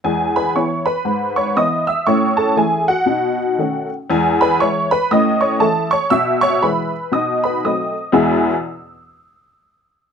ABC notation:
X:1
M:4/4
L:1/8
Q:"Swing" 1/4=118
K:E
V:1 name="Honky-tonk piano"
[Gg] [Bb] [cc'] [Bb]2 [cc'] [dd'] [ee'] | [cc'] [Aa] [Gg] [Ff]4 z | [Gg] [Bb] [cc'] [Bb] [dd'] [cc'] [Aa] [cc'] | [ee'] [cc'] [Bb]2 [dd'] [Bb] [dd']2 |
[E,,B,,G,B,EGe'] z6 z |]
V:2 name="Honky-tonk piano" clef=bass
[E,,G,]2 [E,B,E]2 G,,2 [E,B,E]2 | [A,,C]2 [E,A,E]2 [B,,D]2 [D,A,C]2 | [E,,G,]2 [E,G,E]2 [A,,C]2 [E,A,E]2 | B,,2 [E,G,E]2 [B,,D]2 [F,A,=C]2 |
z8 |]